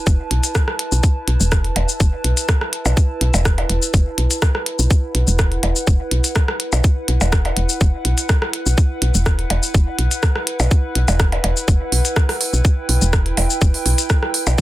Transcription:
0.00 14.61 E4 medium
0.00 14.61 B4 medium
0.00 4.68 A5 medium
0.07 0.15 E1 loud
0.07 kick loud
0.07 shaker soft
0.31 0.40 B1 medium
0.31 closed hi-hat medium
0.44 closed hi-hat soft
0.44 shaker medium
0.55 kick loud
0.55 cross-stick medium
0.55 shaker soft
0.68 cross-stick medium
0.79 closed hi-hat medium
0.92 1.00 B1 loud
0.92 shaker medium
1.03 kick loud
1.03 shaker soft
1.28 1.36 B1 medium
1.28 closed hi-hat medium
1.40 1.70 E1 loud
1.40 shaker medium
1.52 kick loud
1.52 cross-stick medium
1.52 shaker soft
1.64 closed hi-hat soft
1.76 1.85 E1 medium
1.76 closed hi-hat medium
1.76 percussion blips medium
1.89 shaker medium
2.00 2.09 E1 loud
2.00 kick loud
2.00 shaker soft
2.24 2.33 B1 medium
2.24 closed hi-hat medium
2.37 closed hi-hat soft
2.37 shaker medium
2.49 kick loud
2.49 cross-stick loud
2.49 shaker soft
2.61 cross-stick medium
2.73 closed hi-hat medium
2.85 2.93 B1 medium
2.85 percussion blips medium
2.85 shaker medium
2.97 kick loud
2.97 shaker soft
3.21 3.30 B1 medium
3.21 closed hi-hat medium
3.34 3.64 E1 loud
3.34 percussion blips medium
3.34 shaker medium
3.45 kick loud
3.45 cross-stick medium
3.45 shaker soft
3.58 closed hi-hat soft
3.58 percussion blips medium
3.70 3.78 E1 medium
3.70 closed hi-hat medium
3.82 shaker medium
3.94 4.02 E1 loud
3.94 kick loud
3.94 shaker soft
4.18 4.27 B1 medium
4.18 closed hi-hat medium
4.31 closed hi-hat soft
4.31 shaker medium
4.42 kick loud
4.42 cross-stick loud
4.42 shaker soft
4.55 cross-stick medium
4.65 12.42 F#5 medium
4.65 closed hi-hat medium
4.79 4.87 B1 medium
4.79 shaker medium
4.91 kick loud
4.91 shaker soft
5.15 5.23 B1 medium
5.15 closed hi-hat loud
5.27 5.57 E1 loud
5.27 shaker medium
5.39 kick loud
5.39 cross-stick loud
5.39 shaker soft
5.52 closed hi-hat soft
5.63 5.72 E1 medium
5.63 closed hi-hat medium
5.63 percussion blips medium
5.76 shaker medium
5.87 5.96 E1 loud
5.87 kick loud
5.87 shaker soft
6.11 6.20 B1 medium
6.11 closed hi-hat loud
6.24 closed hi-hat soft
6.24 shaker medium
6.36 kick loud
6.36 cross-stick loud
6.36 shaker soft
6.48 cross-stick medium
6.60 closed hi-hat loud
6.72 6.80 B1 loud
6.72 percussion blips medium
6.72 shaker medium
6.84 kick loud
6.84 shaker soft
7.08 7.17 B1 medium
7.08 closed hi-hat loud
7.21 7.51 E1 loud
7.21 percussion blips medium
7.21 shaker medium
7.32 kick loud
7.32 cross-stick loud
7.32 shaker soft
7.45 closed hi-hat soft
7.45 percussion blips medium
7.57 7.65 E1 medium
7.57 closed hi-hat medium
7.69 shaker medium
7.81 7.90 E1 loud
7.81 kick loud
7.81 shaker soft
8.05 8.14 B1 medium
8.05 closed hi-hat loud
8.18 closed hi-hat soft
8.18 shaker medium
8.29 kick loud
8.29 cross-stick loud
8.29 shaker soft
8.42 cross-stick medium
8.53 closed hi-hat loud
8.66 8.74 B1 medium
8.66 shaker medium
8.78 kick loud
8.78 shaker soft
9.02 9.11 B1 medium
9.02 closed hi-hat loud
9.15 9.44 E1 loud
9.15 shaker medium
9.26 kick loud
9.26 cross-stick medium
9.26 shaker soft
9.39 closed hi-hat soft
9.50 9.59 E1 medium
9.50 closed hi-hat loud
9.50 percussion blips medium
9.63 shaker medium
9.74 9.83 E1 loud
9.74 kick loud
9.74 shaker soft
9.99 10.07 B1 medium
9.99 closed hi-hat medium
10.11 closed hi-hat soft
10.11 shaker medium
10.23 kick loud
10.23 cross-stick medium
10.23 shaker soft
10.36 cross-stick medium
10.47 closed hi-hat loud
10.60 10.68 B1 loud
10.60 percussion blips medium
10.60 shaker medium
10.71 kick loud
10.71 shaker soft
10.95 11.04 B1 medium
10.95 closed hi-hat loud
11.08 11.38 E1 loud
11.08 percussion blips medium
11.08 shaker medium
11.20 kick loud
11.20 cross-stick medium
11.20 shaker soft
11.32 closed hi-hat soft
11.32 percussion blips medium
11.44 11.52 E1 medium
11.44 closed hi-hat medium
11.44 percussion blips medium
11.57 shaker medium
11.68 11.77 E1 loud
11.68 kick loud
11.68 shaker soft
11.92 12.01 B1 medium
11.92 open hi-hat medium
12.05 closed hi-hat soft
12.05 shaker medium
12.16 kick loud
12.16 cross-stick medium
12.16 shaker soft
12.29 cross-stick medium
12.29 open hi-hat soft
12.39 14.61 G5 medium
12.39 open hi-hat medium
12.53 12.61 B1 medium
12.53 shaker medium
12.65 kick loud
12.65 shaker soft
12.89 12.98 B1 medium
12.89 open hi-hat medium
13.02 13.32 E1 loud
13.02 shaker medium
13.13 kick loud
13.13 cross-stick medium
13.13 shaker soft
13.26 closed hi-hat soft
13.37 13.46 E1 medium
13.37 open hi-hat medium
13.37 percussion blips medium
13.50 shaker medium
13.61 13.70 E1 loud
13.61 kick loud
13.61 shaker soft
13.74 open hi-hat soft
13.86 13.94 B1 medium
13.86 open hi-hat medium
13.98 closed hi-hat soft
13.98 shaker medium
14.10 kick loud
14.10 cross-stick medium
14.10 shaker soft
14.23 cross-stick medium
14.34 open hi-hat medium
14.47 14.55 B1 loud
14.47 percussion blips medium
14.47 shaker medium

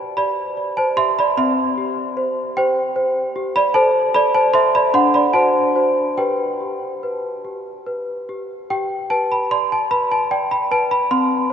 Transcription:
0.00 0.17 G4 medium
0.00 1.40 B4 medium
0.00 0.14 C5 medium
0.00 0.18 D5 medium
0.00 1.40 G5 medium
0.00 0.17 A5 medium
0.00 0.17 B5 medium
0.17 0.82 G4 soft
0.17 0.56 D5 medium
0.17 0.77 B5 loud
0.57 1.19 D5 medium
0.77 0.96 C5 medium
0.77 0.97 A5 medium
0.97 1.37 G4 medium
0.97 1.16 E5 medium
0.97 1.17 C6 loud
1.19 1.38 D5 medium
1.19 1.38 B5 loud
1.37 3.71 C4 medium
1.37 2.53 E5 medium
1.37 2.57 C6 loud
1.78 2.41 G4 medium
2.17 2.57 C5 medium
2.57 3.20 G4 medium
2.57 2.95 C5 medium
2.57 3.55 G5 loud
2.96 3.59 C5 medium
3.36 3.75 G4 medium
3.56 3.74 D5 medium
3.56 3.75 B5 loud
3.74 4.14 A4 medium
3.74 4.12 C5 medium
3.74 4.14 A5 loud
4.14 4.53 A4 medium
4.14 4.33 D5 loud
4.14 4.34 B5 loud
4.35 4.53 C5 medium
4.35 4.54 A5 loud
4.54 4.90 A4 medium
4.54 4.90 C5 medium
4.54 4.73 E5 loud
4.54 4.74 C6 loud
4.75 4.94 D5 medium
4.75 4.95 B5 loud
4.94 6.14 D4 medium
4.94 5.13 F#5 medium
4.94 5.14 C6 loud
5.14 5.34 D5 medium
5.14 5.35 B5 loud
5.33 5.74 F#4 medium
5.33 5.75 C5 medium
5.33 6.17 A5 loud
5.75 6.14 F#4 medium
5.75 6.14 C5 medium
6.18 6.59 G4 medium
6.18 7.02 B4 medium
6.18 7.45 G5 medium
6.60 7.28 G4 soft
7.03 7.70 B4 soft
7.45 8.12 G4 soft
7.86 8.54 B4 soft
8.29 8.69 G4 soft
8.70 11.06 G4 medium
8.70 9.11 G5 loud
9.10 9.75 B4 medium
9.10 9.31 A5 loud
9.32 9.51 B5 medium
9.51 10.15 D5 medium
9.51 9.71 C6 loud
9.72 9.91 A5 medium
9.91 10.54 B4 soft
9.91 10.11 B5 loud
10.12 10.31 A5 medium
10.31 10.95 D5 medium
10.31 10.51 G5 loud
10.51 10.71 B5 loud
10.71 11.11 B4 medium
10.71 10.91 A5 loud
10.91 11.11 B5 loud
11.11 11.53 C4 medium
11.11 11.53 C6 loud

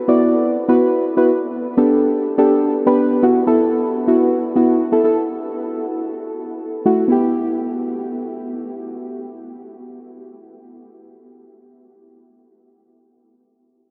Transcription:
0.08 0.54 B3 medium
0.08 0.54 E4 medium
0.08 0.54 F#4 medium
0.08 0.54 D5 loud
0.68 1.06 B3 medium
0.68 1.06 E4 medium
0.68 1.06 F#4 medium
0.68 1.06 B4 loud
1.17 1.29 B3 medium
1.17 1.29 E4 medium
1.17 1.29 F#4 medium
1.17 1.29 B4 loud
1.77 2.24 B3 loud
1.77 2.24 D4 medium
1.77 2.24 G4 medium
1.77 2.24 A4 loud
2.38 2.75 B3 loud
2.38 2.75 D4 medium
2.38 2.75 G4 medium
2.38 2.75 A4 loud
2.86 3.21 B3 loud
2.86 3.23 D4 medium
2.86 3.23 G4 medium
2.86 3.23 B4 loud
3.23 3.41 B3 loud
3.23 3.41 E4 medium
3.23 3.41 F#4 loud
3.47 3.93 B3 loud
3.47 3.93 E4 medium
3.47 3.93 A4 loud
4.07 4.44 B3 medium
4.07 4.44 E4 medium
4.07 4.45 F#4 medium
4.56 4.83 B3 medium
4.56 4.84 E4 medium
4.56 4.84 F#4 medium
4.92 5.01 B3 medium
4.92 5.01 E4 medium
4.92 5.02 A4 medium
5.04 5.16 B3 medium
5.04 5.16 E4 medium
5.04 5.16 A4 medium
6.85 7.04 A3 medium
6.85 7.04 E4 medium
6.85 7.04 F#4 medium
7.08 11.44 B3 medium
7.08 11.46 E4 medium
7.08 11.48 G4 medium

